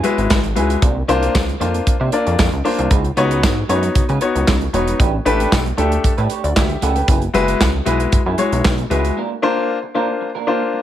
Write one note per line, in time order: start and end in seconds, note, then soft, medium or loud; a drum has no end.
0.03 0.37 G#3 medium
0.03 0.17 B3 medium
0.03 0.38 E4 medium
0.03 0.17 E4 medium
0.03 0.38 F#4 medium
0.03 0.17 G#4 medium
0.03 0.38 B4 loud
0.03 0.17 C#5 medium
0.03 closed hi-hat medium
0.18 0.27 G#1 medium
0.18 muted clean electric guitar stroke soft
0.18 closed hi-hat soft
0.30 0.58 G#1 medium
0.30 muted clean electric guitar stroke medium
0.30 kick loud
0.30 snare loud
0.30 clap medium
0.30 tambourine medium
0.43 muted clean electric guitar stroke soft
0.43 closed hi-hat soft
0.55 0.76 C#2 loud
0.55 0.82 G#3 medium
0.55 0.70 B3 medium
0.55 0.82 E4 medium
0.55 0.70 E4 medium
0.55 0.82 F#4 medium
0.55 0.69 G#4 loud
0.55 0.82 B4 medium
0.55 0.69 B4 medium
0.55 closed hi-hat medium
0.70 0.81 B3 medium
0.70 0.82 E4 medium
0.70 0.82 G#4 medium
0.70 0.82 B4 medium
0.70 closed hi-hat soft
0.82 1.02 C2 loud
0.82 0.99 A#3 medium
0.82 0.96 D4 medium
0.82 0.95 F4 medium
0.82 0.95 C5 medium
0.82 kick loud
0.82 closed hi-hat medium
0.96 muted clean electric guitar stroke soft
1.08 1.29 C2 loud
1.08 1.21 A#3 medium
1.08 1.42 A#3 loud
1.08 1.22 D4 medium
1.08 1.42 D4 loud
1.08 1.42 F4 loud
1.08 1.21 F4 medium
1.08 1.42 C5 loud
1.08 1.20 C5 medium
1.08 closed hi-hat medium
1.22 1.33 A#3 medium
1.22 1.33 D4 medium
1.22 1.34 F4 medium
1.22 1.34 C5 medium
1.22 closed hi-hat medium
1.34 1.55 C#2 medium
1.34 muted clean electric guitar stroke soft
1.34 kick loud
1.34 snare loud
1.34 clap medium
1.34 tambourine medium
1.48 muted clean electric guitar stroke soft
1.48 closed hi-hat soft
1.60 1.81 F2 medium
1.60 1.77 A#3 medium
1.60 1.94 A#3 medium
1.60 1.94 D4 medium
1.60 1.74 D4 medium
1.60 1.94 F4 medium
1.60 1.73 F4 loud
1.60 1.94 C5 medium
1.60 1.73 C5 loud
1.60 closed hi-hat medium
1.74 muted clean electric guitar stroke soft
1.74 closed hi-hat medium
1.86 1.92 C3 soft
1.86 muted clean electric guitar stroke soft
1.86 kick loud
1.86 closed hi-hat medium
2.00 2.10 C3 medium
2.00 2.11 A#3 medium
2.00 2.12 D4 medium
2.00 2.12 F4 medium
2.00 2.14 C5 medium
2.12 2.26 A#3 medium
2.12 2.46 A#3 medium
2.12 2.46 D4 medium
2.12 2.26 D4 medium
2.12 2.46 F4 medium
2.12 2.26 F4 medium
2.12 2.47 D5 medium
2.12 2.26 D5 medium
2.12 closed hi-hat medium
2.26 2.36 F2 loud
2.26 muted clean electric guitar stroke soft
2.26 closed hi-hat soft
2.38 2.50 F2 loud
2.38 muted clean electric guitar stroke soft
2.38 kick loud
2.38 snare loud
2.38 clap medium
2.38 tambourine medium
2.52 2.62 C#2 medium
2.52 muted clean electric guitar stroke soft
2.52 closed hi-hat soft
2.64 2.79 A#3 medium
2.64 2.91 A#3 medium
2.64 2.91 D4 medium
2.64 2.78 D4 medium
2.64 2.91 F4 medium
2.64 2.78 F4 medium
2.64 2.91 C5 medium
2.64 2.77 C5 loud
2.64 open hi-hat medium
2.78 2.88 C2 loud
2.78 2.90 A#3 medium
2.78 2.91 D4 medium
2.78 2.91 F4 medium
2.78 2.90 C5 medium
2.78 closed hi-hat soft
2.90 3.11 C#2 loud
2.90 3.07 G#3 medium
2.90 3.05 D#4 medium
2.90 3.04 F#4 medium
2.90 3.03 B4 loud
2.90 kick loud
2.90 closed hi-hat medium
3.04 muted clean electric guitar stroke soft
3.04 closed hi-hat soft
3.16 3.45 C#2 loud
3.16 3.30 G#3 medium
3.16 3.51 B3 loud
3.16 3.30 D#4 medium
3.16 3.51 D#4 medium
3.16 3.51 F#4 medium
3.16 3.30 F#4 medium
3.16 3.29 B4 medium
3.16 3.51 C#5 loud
3.16 closed hi-hat medium
3.30 3.42 G#3 soft
3.30 3.42 D#4 medium
3.30 3.42 F#4 medium
3.30 3.42 B4 medium
3.30 closed hi-hat medium
3.43 3.64 G#2 medium
3.43 muted clean electric guitar stroke soft
3.43 kick loud
3.43 snare loud
3.43 clap medium
3.43 tambourine medium
3.57 muted clean electric guitar stroke soft
3.69 3.90 F#2 medium
3.69 3.85 G#3 medium
3.69 4.03 B3 medium
3.69 4.03 D#4 medium
3.69 3.83 D#4 medium
3.69 4.03 F#4 medium
3.69 3.82 F#4 medium
3.69 3.82 B4 medium
3.69 4.03 C#5 loud
3.69 closed hi-hat medium
3.83 muted clean electric guitar stroke medium
3.83 closed hi-hat soft
3.95 4.01 C#3 soft
3.95 muted clean electric guitar stroke soft
3.95 kick loud
3.95 closed hi-hat medium
4.09 4.19 C#3 loud
4.09 4.20 G#3 medium
4.09 4.21 D#4 medium
4.09 4.21 F#4 medium
4.09 4.21 B4 medium
4.09 closed hi-hat soft
4.21 4.55 B3 medium
4.21 4.55 D#4 medium
4.21 4.55 F#4 medium
4.21 4.55 C#5 medium
4.21 muted clean electric guitar stroke soft
4.21 closed hi-hat medium
4.35 4.45 C#2 medium
4.35 muted clean electric guitar stroke soft
4.35 closed hi-hat medium
4.47 4.68 C#2 loud
4.47 muted clean electric guitar stroke soft
4.47 kick loud
4.47 snare loud
4.47 clap medium
4.47 tambourine medium
4.61 muted clean electric guitar stroke soft
4.61 closed hi-hat soft
4.73 4.94 E1 loud
4.73 4.88 G#3 medium
4.73 5.00 B3 medium
4.73 5.00 D#4 medium
4.73 4.87 D#4 loud
4.73 5.00 F#4 medium
4.73 4.87 F#4 loud
4.73 4.86 B4 loud
4.73 5.00 C#5 medium
4.73 closed hi-hat medium
4.87 4.99 G#3 medium
4.87 5.00 D#4 medium
4.87 4.99 F#4 medium
4.87 4.99 B4 medium
4.87 closed hi-hat medium
4.99 5.20 A1 loud
4.99 5.16 A3 medium
4.99 5.13 D4 medium
4.99 5.13 G4 medium
4.99 5.12 B4 medium
4.99 kick loud
4.99 closed hi-hat medium
5.13 muted clean electric guitar stroke medium
5.25 5.46 A1 loud
5.25 5.59 A3 loud
5.25 5.39 A3 medium
5.25 5.59 D4 medium
5.25 5.39 D4 medium
5.25 5.59 G4 medium
5.25 5.39 G4 medium
5.25 5.60 B4 loud
5.25 5.38 B4 medium
5.25 closed hi-hat medium
5.39 5.51 A3 medium
5.39 5.51 D4 medium
5.39 5.51 G4 medium
5.39 5.51 B4 medium
5.39 closed hi-hat medium
5.52 5.72 B1 medium
5.52 muted clean electric guitar stroke soft
5.52 kick loud
5.52 snare loud
5.52 clap medium
5.52 tambourine medium
5.65 muted clean electric guitar stroke soft
5.65 closed hi-hat soft
5.77 5.98 D2 medium
5.77 6.11 A3 medium
5.77 5.94 A3 medium
5.77 6.11 D4 medium
5.77 5.92 D4 medium
5.77 6.12 G4 medium
5.77 5.91 G4 loud
5.77 6.12 A4 medium
5.77 5.90 B4 loud
5.77 closed hi-hat medium
5.92 muted clean electric guitar stroke soft
5.92 closed hi-hat medium
6.04 6.10 A2 soft
6.04 muted clean electric guitar stroke soft
6.04 kick loud
6.04 closed hi-hat medium
6.17 6.28 A2 medium
6.17 6.28 A3 medium
6.17 6.29 D4 medium
6.17 6.30 G4 medium
6.17 6.31 B4 medium
6.17 closed hi-hat soft
6.30 6.43 A3 medium
6.30 6.43 D4 medium
6.30 6.43 G4 medium
6.30 6.43 C#5 medium
6.30 closed hi-hat medium
6.44 6.53 D2 loud
6.44 6.56 F#4 medium
6.44 6.56 D5 medium
6.44 muted clean electric guitar stroke medium
6.44 closed hi-hat soft
6.56 6.77 D2 loud
6.56 6.81 G4 medium
6.56 6.81 E5 medium
6.56 muted clean electric guitar stroke soft
6.56 kick loud
6.56 snare loud
6.56 clap medium
6.56 tambourine medium
6.69 muted clean electric guitar stroke soft
6.69 closed hi-hat soft
6.82 7.03 C#2 medium
6.82 6.96 A3 loud
6.82 6.96 D4 medium
6.82 6.95 G4 loud
6.82 6.96 A4 medium
6.82 6.94 B4 loud
6.82 6.95 F#5 medium
6.82 closed hi-hat medium
6.96 7.07 A3 soft
6.96 7.08 D4 medium
6.96 7.08 G4 medium
6.96 7.07 B4 medium
6.96 7.21 B4 medium
6.96 7.21 G5 medium
6.96 closed hi-hat soft
7.08 7.28 F#1 loud
7.08 7.25 B3 medium
7.08 7.22 E4 medium
7.08 7.22 G#4 medium
7.08 7.21 B4 medium
7.08 kick loud
7.08 closed hi-hat medium
7.22 muted clean electric guitar stroke soft
7.22 closed hi-hat soft
7.34 7.55 F#1 loud
7.34 7.68 G#3 loud
7.34 7.47 B3 medium
7.34 7.68 E4 loud
7.34 7.48 E4 medium
7.34 7.68 F#4 medium
7.34 7.47 G#4 medium
7.34 7.68 B4 loud
7.34 7.47 B4 medium
7.34 closed hi-hat medium
7.48 7.59 B3 medium
7.48 7.60 E4 medium
7.48 7.60 G#4 medium
7.48 7.60 B4 medium
7.48 closed hi-hat medium
7.61 7.81 C#2 medium
7.61 kick loud
7.61 snare loud
7.61 clap medium
7.61 tambourine medium
7.74 muted clean electric guitar stroke soft
7.85 8.07 B1 medium
7.85 8.20 G#3 medium
7.85 8.03 B3 medium
7.85 8.20 E4 medium
7.85 8.01 E4 medium
7.85 8.20 F#4 medium
7.85 8.00 G#4 medium
7.85 8.20 B4 loud
7.85 7.99 B4 loud
7.85 closed hi-hat medium
8.00 muted clean electric guitar stroke soft
8.00 closed hi-hat soft
8.12 8.18 F#2 medium
8.12 muted clean electric guitar stroke soft
8.12 kick loud
8.12 closed hi-hat medium
8.26 8.36 F#2 medium
8.26 8.37 B3 medium
8.26 8.38 E4 medium
8.26 8.38 G#4 medium
8.26 8.40 B4 medium
8.38 8.72 G#3 medium
8.38 8.52 B3 medium
8.38 8.72 E4 medium
8.38 8.52 E4 medium
8.38 8.72 F#4 medium
8.38 8.52 G#4 medium
8.38 8.72 C#5 medium
8.38 8.52 C#5 medium
8.38 closed hi-hat medium
8.52 8.62 B1 loud
8.52 muted clean electric guitar stroke soft
8.52 closed hi-hat soft
8.65 8.85 B1 medium
8.65 muted clean electric guitar stroke soft
8.65 kick loud
8.65 snare loud
8.65 clap medium
8.65 tambourine medium
8.78 muted clean electric guitar stroke soft
8.78 closed hi-hat soft
8.90 9.11 C#2 medium
8.90 9.17 G#3 medium
8.90 9.05 B3 medium
8.90 9.17 E4 medium
8.90 9.05 E4 loud
8.90 9.17 F#4 medium
8.90 9.04 G#4 loud
8.90 9.17 B4 medium
8.90 9.03 B4 loud
8.90 closed hi-hat medium
9.05 9.16 B3 soft
9.05 9.17 E4 medium
9.05 9.17 G#4 medium
9.05 9.16 B4 medium
9.05 closed hi-hat soft
9.17 9.33 A#3 medium
9.17 9.31 D4 medium
9.17 9.30 F4 loud
9.17 9.29 A#4 loud
9.31 muted clean electric guitar stroke soft
9.42 9.76 A#3 loud
9.42 9.56 A#3 medium
9.42 9.77 D4 medium
9.42 9.57 D4 medium
9.42 9.77 F4 loud
9.42 9.56 F4 medium
9.42 9.56 A#4 medium
9.42 9.77 C5 loud
9.57 9.68 A#3 medium
9.57 9.68 D4 medium
9.57 9.69 F4 medium
9.57 9.69 A#4 medium
9.69 muted clean electric guitar stroke soft
9.83 muted clean electric guitar stroke medium
9.94 10.29 A#3 medium
9.94 10.12 A#3 medium
9.94 10.29 D4 medium
9.94 10.09 D4 medium
9.94 10.29 F4 medium
9.94 10.08 F4 medium
9.94 10.08 A#4 loud
9.94 10.29 C5 medium
10.09 muted clean electric guitar stroke soft
10.21 muted clean electric guitar stroke soft
10.35 10.46 A#3 medium
10.35 10.47 D4 medium
10.35 10.47 F4 medium
10.35 10.48 A#4 medium
10.47 10.81 A#3 medium
10.47 10.60 A#3 medium
10.47 10.81 D4 medium
10.47 10.61 D4 medium
10.47 10.81 F4 medium
10.47 10.60 F4 medium
10.47 10.81 C5 loud
10.47 10.60 C5 medium
10.61 muted clean electric guitar stroke soft
10.73 muted clean electric guitar stroke soft